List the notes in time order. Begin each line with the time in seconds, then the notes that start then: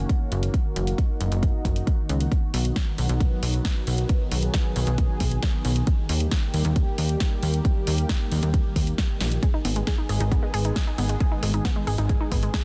Already playing: D#3 A#3 C#4 F#4
0.09 kick, closed hi-hat
0.32 F#1, closed hi-hat
0.43 closed hi-hat
0.54 D#4, kick, closed hi-hat
0.76 F#1, closed hi-hat
0.87 closed hi-hat
0.98 kick, closed hi-hat
1.21 F#1, closed hi-hat
1.32 F#1, closed hi-hat
1.43 kick, closed hi-hat
1.65 F#1, kick, closed hi-hat
1.76 closed hi-hat
1.87 kick, closed hi-hat
2.09 C#2, closed hi-hat
2.20 closed hi-hat
2.32 F#3 B3, kick, closed hi-hat
2.54 B1, open hi-hat
2.65 closed hi-hat
2.76 kick, snare, closed hi-hat
2.98 B1, open hi-hat
3.09 B1, closed hi-hat
3.20 kick, closed hi-hat
3.43 B1, open hi-hat
3.54 closed hi-hat
3.65 kick, snare, closed hi-hat
3.87 B1, open hi-hat
3.98 closed hi-hat
4.09 G#4, kick, closed hi-hat
4.32 B1, open hi-hat
4.43 closed hi-hat
4.54 kick, snare, closed hi-hat
4.76 B1, open hi-hat
4.87 B1, closed hi-hat
4.98 kick, closed hi-hat
5.20 B1, kick, open hi-hat
5.31 closed hi-hat
5.43 kick, snare, closed hi-hat
5.65 B1, open hi-hat
5.76 closed hi-hat
5.87 G3 A#3 G4, kick, closed hi-hat
6.09 D#2, open hi-hat
6.20 closed hi-hat
6.31 kick, snare, closed hi-hat
6.54 D#2, open hi-hat
6.65 D#2, closed hi-hat
6.76 kick, closed hi-hat
6.98 D#2, open hi-hat
7.09 closed hi-hat
7.20 kick, snare, closed hi-hat
7.43 D#2, open hi-hat
7.54 closed hi-hat
7.65 kick, closed hi-hat
7.87 D#2, open hi-hat
7.98 closed hi-hat
8.09 kick, snare, closed hi-hat
8.32 D#2, open hi-hat
8.43 D#2, closed hi-hat
8.54 kick, closed hi-hat
8.76 D#2, kick, open hi-hat
8.87 closed hi-hat
8.98 kick, snare, closed hi-hat
9.21 A#1, snare, open hi-hat
9.32 closed hi-hat
9.43 D#3 G#3 B3 G#4, kick, closed hi-hat
9.54 D#4
9.65 G#1 B3, open hi-hat
9.76 G#3, closed hi-hat
9.87 G#4, kick, snare, closed hi-hat
9.98 D#4
10.09 G#1 G#4, open hi-hat
10.20 G#1 D#4, closed hi-hat
10.32 B3, kick, closed hi-hat
10.43 G#3
10.54 G#1 G#4, open hi-hat
10.65 D#4, closed hi-hat
10.76 G#4, kick, snare, closed hi-hat
10.87 D#4
10.98 G#1 B3, open hi-hat
11.09 G#3, closed hi-hat
11.20 G#4, kick, closed hi-hat
11.32 D#4
11.43 G#1 G#4, open hi-hat
11.54 D#4, closed hi-hat
11.65 B3, kick, snare, closed hi-hat
11.76 G#3
11.87 G#1 G#4, open hi-hat
11.98 G#1 D#4, closed hi-hat
12.09 G#4, kick, closed hi-hat
12.21 D#4
12.32 G#1 B3, kick, open hi-hat
12.43 G#3, closed hi-hat
12.54 G#4, kick, snare, closed hi-hat